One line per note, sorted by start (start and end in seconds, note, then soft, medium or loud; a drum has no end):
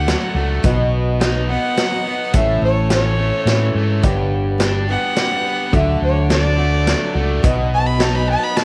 0.00 0.14 D2 medium
0.00 0.36 D3 medium
0.00 0.35 A3 medium
0.00 0.64 D4 medium
0.00 0.63 A4 medium
0.00 0.90 F#5 medium
0.00 2.32 F#5 medium
0.00 0.61 D6 medium
0.07 0.36 F#3 medium
0.07 0.36 A3 medium
0.07 0.36 D4 medium
0.07 0.63 F#4 medium
0.07 0.34 F#4 medium
0.07 0.65 A4 medium
0.07 0.65 D5 medium
0.07 snare medium
0.07 closed hi-hat medium
0.35 0.58 C#2 medium
0.35 0.64 A3 soft
0.35 0.64 D4 soft
0.35 0.64 F#4 soft
0.63 1.56 B1 medium
0.63 1.20 B2 medium
0.63 1.19 F#3 medium
0.63 1.20 B3 medium
0.63 1.21 D#4 medium
0.63 1.10 F#4 medium
0.63 1.21 F#4 medium
0.63 2.33 B4 medium
0.63 1.10 B4 medium
0.63 1.10 D#5 medium
0.63 2.33 D#6 medium
0.63 kick loud
0.63 closed hi-hat medium
1.20 1.49 F#3 medium
1.20 1.49 B3 medium
1.20 1.48 D#4 medium
1.20 1.63 F#4 medium
1.20 1.47 F#4 medium
1.20 1.63 B4 medium
1.20 1.63 D#5 medium
1.20 snare medium
1.20 closed hi-hat medium
1.48 1.76 B3 soft
1.48 1.77 D#4 soft
1.48 1.77 F#4 soft
1.48 2.38 F#5 medium
1.76 2.05 F#3 medium
1.76 2.06 B3 medium
1.76 2.05 D#4 medium
1.76 2.34 F#4 medium
1.76 2.03 F#4 medium
1.76 2.35 B4 medium
1.76 2.35 D#5 medium
1.76 snare medium
1.76 closed hi-hat medium
2.04 2.34 B3 soft
2.04 2.34 D#4 soft
2.04 2.34 F#4 soft
2.33 2.57 A1 loud
2.33 2.90 A2 medium
2.33 2.89 E3 medium
2.33 2.90 A3 medium
2.33 2.91 C#4 medium
2.33 2.79 E4 medium
2.33 2.80 A4 medium
2.33 2.92 A4 medium
2.33 4.03 C#5 medium
2.33 2.80 C#5 medium
2.33 2.63 E5 medium
2.33 4.03 A5 medium
2.33 4.03 E6 medium
2.33 kick loud
2.33 closed hi-hat medium
2.62 3.31 A1 medium
2.62 2.91 C#5 medium
2.89 3.19 E3 medium
2.89 3.19 A3 medium
2.89 3.19 C#4 medium
2.89 3.32 E4 medium
2.89 3.32 A4 medium
2.89 3.17 A4 medium
2.89 3.32 C#5 medium
2.89 4.02 C#5 loud
2.89 snare medium
2.89 closed hi-hat medium
3.18 3.47 A3 soft
3.18 3.47 C#4 soft
3.18 3.47 A4 soft
3.46 3.72 A2 medium
3.46 4.03 E3 medium
3.46 4.03 A3 medium
3.46 4.04 C#4 medium
3.46 4.04 E4 medium
3.46 4.04 A4 medium
3.46 4.04 C#5 medium
3.46 snare medium
3.46 closed hi-hat medium
3.75 4.01 G#2 medium
3.75 4.04 A3 medium
4.02 4.95 G1 medium
4.02 4.60 G2 medium
4.02 4.60 D3 medium
4.02 4.57 G3 medium
4.02 4.58 B3 medium
4.02 4.60 D4 medium
4.02 4.49 G4 medium
4.02 5.72 G4 medium
4.02 4.60 G4 medium
4.02 4.49 B4 medium
4.02 5.72 B4 medium
4.02 4.49 D5 loud
4.02 7.40 D6 medium
4.02 kick loud
4.02 closed hi-hat medium
4.58 4.88 G3 medium
4.58 4.88 B3 medium
4.58 4.87 D4 medium
4.58 5.02 G4 medium
4.58 4.86 G4 medium
4.58 5.02 B4 medium
4.58 5.02 D5 medium
4.58 snare medium
4.58 closed hi-hat medium
4.87 5.15 G3 soft
4.87 5.16 B3 soft
4.87 5.17 D4 soft
4.87 5.17 G4 soft
4.87 5.77 F#5 loud
5.16 5.72 G3 medium
5.16 5.73 B3 medium
5.16 5.72 D4 medium
5.16 5.73 G4 medium
5.16 5.74 G4 medium
5.16 5.73 B4 medium
5.16 5.73 D5 medium
5.16 snare medium
5.16 closed hi-hat medium
5.46 5.74 B3 medium
5.72 5.96 D2 loud
5.72 6.30 D3 medium
5.72 6.29 F#3 medium
5.72 6.28 A3 medium
5.72 6.30 D4 medium
5.72 6.19 F#4 medium
5.72 6.31 F#4 medium
5.72 6.19 A4 medium
5.72 7.42 A4 medium
5.72 6.19 D5 medium
5.72 6.02 E5 medium
5.72 8.64 F#5 medium
5.72 kick loud
5.72 closed hi-hat medium
6.01 6.93 D2 medium
6.01 6.31 C#5 medium
6.29 6.58 F#3 medium
6.29 6.58 A3 medium
6.29 6.58 D4 medium
6.29 6.71 F#4 medium
6.29 6.56 F#4 medium
6.29 6.72 A4 medium
6.29 6.72 D5 medium
6.29 7.41 D5 loud
6.29 snare medium
6.29 closed hi-hat medium
6.58 6.85 A3 soft
6.58 6.86 D4 soft
6.58 6.86 F#4 medium
6.85 7.14 F#3 medium
6.85 7.15 A3 medium
6.85 7.14 D4 medium
6.85 7.42 F#4 medium
6.85 7.12 F#4 medium
6.85 7.43 A4 medium
6.85 7.43 D5 medium
6.85 snare medium
6.85 closed hi-hat medium
7.13 7.38 C#2 medium
7.13 7.43 A3 soft
7.13 7.43 D4 soft
7.13 7.42 F#4 medium
7.42 8.35 B1 medium
7.42 8.00 B2 medium
7.42 7.97 F#3 medium
7.42 7.99 B3 medium
7.42 7.99 D#4 medium
7.42 7.89 F#4 medium
7.42 8.00 F#4 loud
7.42 8.64 B4 medium
7.42 7.89 B4 medium
7.42 7.89 D#5 medium
7.42 8.64 D#6 medium
7.42 kick loud
7.42 closed hi-hat medium
7.74 7.88 A5 loud
7.87 8.03 B5 medium
7.98 8.55 F#3 medium
7.98 8.56 B3 medium
7.98 8.57 D#4 medium
7.98 8.41 F#4 medium
7.98 8.57 F#4 medium
7.98 8.42 B4 medium
7.98 8.42 D#5 medium
7.98 8.17 A5 medium
7.98 snare medium
7.98 closed hi-hat medium
8.15 8.28 B5 loud
8.29 8.64 B3 medium
8.29 8.45 A5 loud
8.44 8.58 B5 loud
8.56 8.64 F#3 medium
8.56 8.64 B3 medium
8.56 8.64 D#4 medium
8.56 8.64 F#4 medium
8.56 8.64 B4 medium
8.56 8.64 D#5 medium
8.56 8.64 A5 loud
8.56 snare medium
8.56 closed hi-hat medium